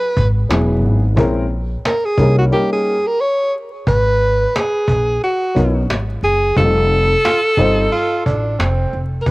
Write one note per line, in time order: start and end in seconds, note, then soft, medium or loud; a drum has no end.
0.00 0.28 B4 medium
0.17 0.45 G#1 loud
0.17 cajon bass medium
0.49 0.83 E1 medium
0.49 0.99 F#3 medium
0.49 0.99 B3 medium
0.49 0.99 C#4 medium
0.49 1.00 E4 medium
0.49 1.00 G#4 medium
0.49 cajon slap loud
0.82 1.17 G#1 medium
0.82 cajon slap soft
1.16 1.74 A#1 loud
1.16 1.42 G#3 medium
1.16 1.42 C4 medium
1.16 1.42 C#4 medium
1.16 1.43 E4 medium
1.16 1.43 A#4 loud
1.16 cajon bass loud
1.51 cajon slap soft
1.85 2.07 A#4 medium
1.85 cajon slap loud
2.05 2.38 G#4 medium
2.17 2.47 C2 loud
2.17 2.49 G3 medium
2.17 2.50 A#3 medium
2.17 2.50 C#4 medium
2.17 2.51 D#4 medium
2.17 2.52 A#4 medium
2.17 cajon bass medium
2.38 2.45 F#4 medium
2.51 2.93 G3 medium
2.51 2.93 A#3 medium
2.51 2.93 C#4 medium
2.51 2.94 D#4 medium
2.51 2.71 G4 medium
2.51 2.94 A#4 medium
2.73 3.08 G#4 medium
3.07 3.22 A#4 loud
3.21 3.54 C#5 loud
3.87 4.44 G#1 medium
3.87 4.58 B4 loud
3.87 cajon bass loud
4.21 cajon slap soft
4.56 5.23 G#4 medium
4.56 cajon slap loud
4.88 5.16 A#1 medium
4.88 cajon bass medium
5.22 5.86 F#4 medium
5.22 cajon slap medium
5.55 5.89 B1 medium
5.55 5.80 F#3 medium
5.55 5.81 B3 medium
5.55 5.81 C#4 medium
5.55 5.81 D#4 medium
5.55 5.81 A#4 medium
5.55 cajon bass medium
5.89 6.18 G#1 medium
5.89 cajon slap loud
6.22 6.51 F#1 medium
6.22 6.55 G#4 loud
6.22 cajon slap soft
6.56 7.14 F1 medium
6.56 7.06 G3 medium
6.56 7.06 C4 medium
6.56 7.06 D#4 medium
6.56 7.06 F4 medium
6.56 6.65 G4 medium
6.56 8.55 A4 loud
6.56 cajon bass medium
6.65 7.10 A4 medium
7.25 7.40 F4 loud
7.25 cajon slap loud
7.57 7.86 G1 medium
7.57 7.83 G3 medium
7.57 7.83 C4 medium
7.57 7.89 D#4 medium
7.57 7.83 D#4 medium
7.57 7.83 F4 medium
7.57 7.84 C5 medium
7.57 cajon bass medium
7.91 8.23 F4 loud
7.91 cajon slap soft
8.26 8.54 A1 medium
8.26 8.61 D4 medium
8.26 cajon bass medium
8.59 8.88 F1 medium
8.59 9.04 C4 medium
8.59 cajon slap loud
8.92 9.21 F1 medium
8.92 cajon slap soft
9.22 9.29 A#4 medium
9.26 9.31 E1 loud
9.26 cajon bass loud